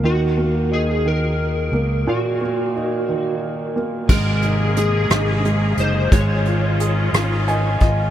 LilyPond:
<<
  \new Staff \with { instrumentName = "Electric slide guitar" } { \time 6/8 \key ees \dorian \tempo 4. = 59 ges'4 aes'8 bes'4. | ges'2 r4 | bes'4 aes'4 r8 c''8 | des''2~ des''8 r8 | }
  \new Staff \with { instrumentName = "Upright piano" } { \time 6/8 \key ees \dorian ees8 bes8 ees'8 ees4 bes8 | bes,8 bes8 ees'8 ees4 bes8 | aes8 ees'8 aes8 ees'8 aes8 ees'8 | aes8 f'8 aes'8 f'8 <ees' aes''>8 <f' ees''>8 | }
  \new Staff \with { instrumentName = "String section" } { \time 6/8 \key ees \dorian r2. | r2. | <c bes aes'>2. | <ees des' f'>2. | }
  \new Staff \with { instrumentName = "Fingered electric bass" } { \clef bass \time 6/8 \key ees \dorian ees,2~ ees,8 des,8 | r2. | aes,,4. aes,,4 ges,,8 | aes,,4. aes,,4 aes,,8 | }
  \new DrumStaff \with { instrumentName = "Drums" } \drummode { \time 6/8 r4. r4. | r4. r4. | <cymc bd>8 hh8 hh8 <hh ss>8 hh8 hh8 | <hh bd>8 hh8 hh8 <hh ss>8 hh8 <hh bd>8 | }
>>